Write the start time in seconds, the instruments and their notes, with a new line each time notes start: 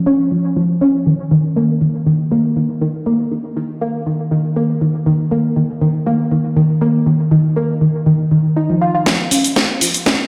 0.06 synth pluck C#4
0.31 synth pluck F3
0.56 synth pluck F3
0.81 synth pluck C#4
1.06 synth pluck D#3
1.31 synth pluck D#3
1.56 synth pluck A#3
1.81 synth pluck D#3
2.06 synth pluck D#3
2.31 synth pluck A#3
2.56 synth pluck D#3
2.81 synth pluck D#3
3.06 synth pluck A#3
3.31 synth pluck D#3
3.56 synth pluck D#3
3.81 synth pluck A#3
4.06 synth pluck D#3
4.31 synth pluck D#3
4.56 synth pluck A#3
4.81 synth pluck D#3
5.06 synth pluck D#3
5.31 synth pluck A#3
5.56 synth pluck D#3
5.81 synth pluck D#3
6.06 synth pluck A#3
6.31 synth pluck D#3
6.56 synth pluck D#3
6.81 synth pluck A#3
7.06 synth pluck D#3
7.31 synth pluck D#3
7.56 synth pluck A#3
7.81 synth pluck D#3
8.06 synth pluck D#3
8.31 synth pluck D#3
8.56 synth pluck D#4
8.69 synth pluck F3
8.81 synth pluck F4
8.95 synth pluck F4
9.06 synth pluck F3, kick, snare, closed hi-hat, shaker
9.31 synth pluck C#4, open hi-hat, shaker
9.44 closed hi-hat, shaker
9.56 synth pluck F3, kick, snare, closed hi-hat, shaker
9.81 synth pluck F3, open hi-hat, shaker
9.94 closed hi-hat, shaker
10.06 synth pluck C#4, kick, snare, closed hi-hat, shaker